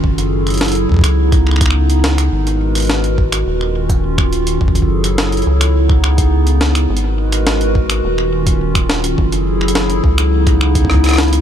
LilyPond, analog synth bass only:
\new Staff \with { instrumentName = "Analog synth bass" } { \clef bass \time 4/4 \key cis \dorian \tempo 4 = 105 fis,,4. cis,2~ cis,8 | gis,,2 dis,,2 | fis,,4. cis,2~ cis,8 | gis,,2 dis,,2 |
fis,,4. cis,2~ cis,8 | }